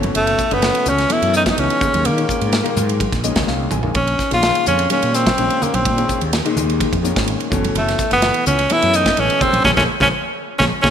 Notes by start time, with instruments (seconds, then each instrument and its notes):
Already playing: fretless electric bass F#1, grand piano B2 E3 A3 C#4
0.03 ride, high conga
0.15 fretless electric bass F#1, tenor saxophone A3, ride
0.27 ride
0.39 kick, hi-hat pedal
0.50 fretless electric bass F#1, grand piano B2 E3 A3 C#4, tenor saxophone B3, ride
0.62 snare, ride
0.75 ride
0.86 fretless electric bass C#2, tenor saxophone C#4, hi-hat pedal, low conga
0.98 snare, ride
1.09 grand piano B2 E3 A3 B3, ride, high conga
1.13 tenor saxophone E4
1.22 fretless electric bass F#2, ride
1.33 tenor saxophone D#4, snare, hi-hat pedal
1.46 kick, snare, ride, high conga
1.51 tenor saxophone D#4
1.56 fretless electric bass C#2, grand piano B2 E3 A3 D#4, tenor saxophone C#4, ride
1.70 ride
1.80 grand piano A#2 D#3 G#3 C#4, muted fretless electric bass stroke, kick, hi-hat pedal, low conga
1.94 fretless electric bass D#2, ride, high conga
2.05 fretless electric bass D#3, tenor saxophone A#3, ride
2.16 grand piano A#2 D#3 G#3 C#4, ride
2.29 kick, hi-hat pedal
2.41 fretless electric bass G#2, ride
2.53 snare, ride
2.63 grand piano A#2 D#3 G#3 A#3, ride
2.76 fretless electric bass G#2, hi-hat pedal, high conga, low conga
2.89 ride
3.00 kick, ride, high conga, low conga
3.12 fretless electric bass A#1, kick, snare, ride
3.23 grand piano A#2 D#3 G#3 C#4 D#5, hi-hat pedal
3.36 fretless electric bass C#2, kick, snare, ride, high conga
3.47 fretless electric bass C2, grand piano F5, snare
3.71 fretless electric bass A#1, grand piano G#5, hi-hat pedal, mid tom, low conga
3.83 grand piano A#2 D#3 G#3 A#3, floor tom
3.95 fretless electric bass A#1, tenor saxophone C#4, kick, ride
4.07 ride
4.19 kick, snare, hi-hat pedal
4.31 fretless electric bass A#1, grand piano A#2 D#3 G#3 C#4, tenor saxophone F4, snare, ride
4.43 snare, ride
4.55 ride
4.66 fretless electric bass F2, tenor saxophone C#4, hi-hat pedal, low conga
4.79 ride
4.90 grand piano A#2 D#3 G#3 C#4, tenor saxophone C#4, ride, high conga
5.02 fretless electric bass A#2, ride
5.14 tenor saxophone C4, snare, hi-hat pedal
5.26 kick, snare, ride, high conga
5.38 fretless electric bass A#1, grand piano A#2 D#3 G#3 C#4, ride
5.50 ride
5.62 tenor saxophone A#3, muted fretless electric bass stroke, hi-hat pedal, low conga
5.74 fretless electric bass A#1, tenor saxophone C4, ride, high conga
5.85 fretless electric bass A#2, kick, ride
5.97 grand piano A#2 D#3 G#3 C#4, ride
6.09 kick, hi-hat pedal
6.21 fretless electric bass D#2, ride
6.33 snare, ride
6.45 grand piano A#2 D#3 G#3 D#4, ride
6.56 fretless electric bass D#2, hi-hat pedal, low conga
6.70 ride
6.80 kick, ride, high conga
6.93 fretless electric bass F2, kick, ride
7.03 grand piano A#2 D#3 G#3 C#4, hi-hat pedal
7.16 fretless electric bass G#1, kick, snare, ride
7.28 ride
7.40 ride
7.50 fretless electric bass F#1, grand piano B2 E3 A3 C#4, kick, hi-hat pedal, low conga
7.64 ride, high conga
7.75 fretless electric bass F#1, tenor saxophone A3, ride
7.88 snare, ride
7.99 kick, snare, hi-hat pedal
8.11 fretless electric bass F#1, grand piano B2 E3 A3 B3, tenor saxophone B3, snare, ride
8.22 snare, ride
8.34 ride
8.46 fretless electric bass C#2, tenor saxophone C#4, hi-hat pedal, low conga
8.59 ride
8.70 grand piano B2 E3 A3 C#4, tenor saxophone E4, ride, high conga
8.82 fretless electric bass F#2, ride
8.93 tenor saxophone D#4, hi-hat pedal
9.06 kick, snare, ride, high conga
9.17 fretless electric bass A1, grand piano B2 E3 A3 B3, tenor saxophone C#4, ride
9.30 ride
9.41 grand piano A#2 D#3 G#3 C#4, tenor saxophone C4, muted fretless electric bass stroke, kick, hi-hat pedal, low conga
9.53 fretless electric bass A#1, ride, high conga
9.64 fretless electric bass A#1, grand piano F3 G#3 A#3, tenor saxophone C#4, kick, snare, low conga
9.77 fretless electric bass A#1, grand piano F3 G#3 A#3, tenor saxophone C#4, kick, snare, low conga
10.00 fretless electric bass A#1, grand piano F3 G#3 A#3, tenor saxophone C#4, kick, snare, low conga
10.59 fretless electric bass A#1, grand piano F3 G#3 A#3, tenor saxophone C#4, kick, snare, low conga
10.82 fretless electric bass A#1, grand piano F3 G#3 A#3, tenor saxophone C#4, kick, snare, low conga